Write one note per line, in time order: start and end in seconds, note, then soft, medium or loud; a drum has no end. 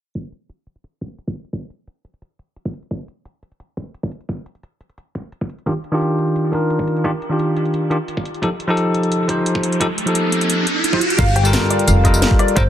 0.15 kick loud
0.15 closed hi-hat medium
0.32 closed hi-hat medium
0.50 closed hi-hat medium
0.67 closed hi-hat medium
0.76 closed hi-hat soft
0.84 closed hi-hat medium
1.01 kick medium
1.01 closed hi-hat medium
1.19 closed hi-hat medium
1.27 kick loud
1.36 closed hi-hat medium
1.45 closed hi-hat soft
1.53 kick loud
1.53 closed hi-hat medium
1.70 closed hi-hat medium
1.88 closed hi-hat medium
2.05 closed hi-hat medium
2.14 closed hi-hat soft
2.22 closed hi-hat medium
2.39 closed hi-hat medium
2.56 closed hi-hat medium
2.65 kick loud
2.74 closed hi-hat medium
2.83 closed hi-hat soft
2.91 kick loud
2.91 closed hi-hat medium
3.08 closed hi-hat medium
3.25 closed hi-hat medium
3.43 closed hi-hat medium
3.52 closed hi-hat soft
3.60 closed hi-hat medium
3.77 kick medium
3.77 closed hi-hat medium
3.94 closed hi-hat medium
4.03 kick loud
4.12 closed hi-hat medium
4.21 closed hi-hat soft
4.29 kick loud
4.29 closed hi-hat medium
4.46 closed hi-hat medium
4.55 closed hi-hat soft
4.63 closed hi-hat medium
4.81 closed hi-hat medium
4.90 closed hi-hat soft
4.98 closed hi-hat medium
5.15 kick medium
5.15 closed hi-hat medium
5.32 closed hi-hat medium
5.41 kick loud
5.50 closed hi-hat medium
5.59 closed hi-hat soft
5.66 5.72 D#3 medium
5.66 5.72 D4 medium
5.66 5.72 F4 medium
5.66 5.72 G4 medium
5.66 kick loud
5.66 closed hi-hat medium
5.84 closed hi-hat medium
5.91 6.50 D#3 medium
5.91 6.51 D4 medium
5.91 6.51 F4 medium
5.91 6.52 G4 loud
6.01 closed hi-hat medium
6.19 closed hi-hat medium
6.28 closed hi-hat soft
6.36 closed hi-hat medium
6.52 7.02 D#3 medium
6.52 7.03 D4 medium
6.52 7.03 F4 medium
6.52 7.04 A#4 medium
6.52 kick medium
6.52 closed hi-hat medium
6.70 closed hi-hat medium
6.79 kick loud
6.88 closed hi-hat medium
6.96 closed hi-hat soft
7.04 7.10 D#3 medium
7.04 7.10 D4 medium
7.04 7.10 F4 medium
7.04 7.10 G4 loud
7.04 kick loud
7.04 closed hi-hat medium
7.22 closed hi-hat medium
7.29 7.88 D#3 medium
7.29 7.89 D4 medium
7.29 7.89 F4 medium
7.29 7.90 G4 medium
7.39 closed hi-hat medium
7.57 closed hi-hat medium
7.65 closed hi-hat soft
7.74 closed hi-hat medium
7.90 7.96 D#3 medium
7.90 7.96 D4 medium
7.90 7.96 F4 medium
7.90 7.97 G4 medium
7.90 closed hi-hat medium
8.08 closed hi-hat medium
8.17 kick loud
8.25 closed hi-hat medium
8.34 closed hi-hat soft
8.42 8.48 F3 medium
8.42 8.48 D#4 medium
8.42 8.48 G4 medium
8.42 8.48 A4 medium
8.42 kick loud
8.42 closed hi-hat medium
8.42 riser medium
8.60 closed hi-hat medium
8.68 9.26 F3 medium
8.68 9.27 D#4 medium
8.68 9.27 G4 medium
8.68 9.28 A4 loud
8.77 closed hi-hat medium
8.95 closed hi-hat medium
9.03 closed hi-hat soft
9.12 closed hi-hat medium
9.28 9.78 F3 medium
9.28 9.79 D#4 medium
9.28 9.79 G4 medium
9.28 9.79 C5 medium
9.28 kick medium
9.28 closed hi-hat medium
9.46 closed hi-hat medium
9.55 kick loud
9.63 closed hi-hat medium
9.72 closed hi-hat soft
9.80 9.86 F3 medium
9.80 9.86 D#4 medium
9.80 9.86 G4 medium
9.80 9.86 A4 loud
9.80 kick loud
9.80 closed hi-hat medium
9.98 closed hi-hat medium
10.05 10.64 F3 medium
10.05 10.65 D#4 medium
10.05 10.65 G4 medium
10.05 10.66 A4 medium
10.05 closed hi-hat soft
10.15 closed hi-hat medium
10.32 closed hi-hat medium
10.41 closed hi-hat soft
10.50 closed hi-hat medium
10.67 closed hi-hat medium
10.84 closed hi-hat medium
10.92 10.98 F3 medium
10.92 10.98 D#4 medium
10.92 10.98 G4 medium
10.92 10.98 C5 medium
10.92 kick loud
11.01 closed hi-hat medium
11.10 closed hi-hat soft
11.18 11.52 G1 loud
11.18 11.24 G3 medium
11.18 11.24 F4 medium
11.18 11.24 A4 medium
11.18 11.24 A#4 loud
11.18 11.36 F5 loud
11.18 kick loud
11.18 closed hi-hat medium
11.18 crash loud
11.18 tambourine soft
11.36 11.68 G5 loud
11.36 cross-stick soft
11.36 closed hi-hat medium
11.43 12.02 G3 loud
11.43 12.03 F4 medium
11.43 12.03 A4 medium
11.43 12.04 A#4 loud
11.43 tambourine medium
11.53 snare loud
11.53 closed hi-hat loud
11.53 tambourine medium
11.70 11.88 D5 loud
11.70 closed hi-hat medium
11.79 closed hi-hat soft
11.88 12.21 F1 medium
11.88 11.95 F5 loud
11.88 closed hi-hat loud
11.88 tambourine medium
12.03 12.54 G3 medium
12.03 12.54 F4 medium
12.03 12.55 A4 medium
12.03 12.55 A#4 medium
12.03 12.40 D#5 loud
12.03 kick medium
12.03 closed hi-hat medium
12.03 tambourine soft
12.14 tambourine medium
12.22 snare loud
12.22 closed hi-hat loud
12.31 kick loud
12.31 cross-stick soft
12.39 12.55 D5 loud
12.39 cross-stick soft
12.39 closed hi-hat medium
12.48 closed hi-hat soft
12.56 12.69 G1 loud
12.56 12.61 G3 loud
12.56 12.62 F4 medium
12.56 12.62 A4 medium
12.56 12.62 A#4 loud
12.56 12.69 C5 loud
12.56 kick loud
12.56 closed hi-hat medium
12.56 tambourine soft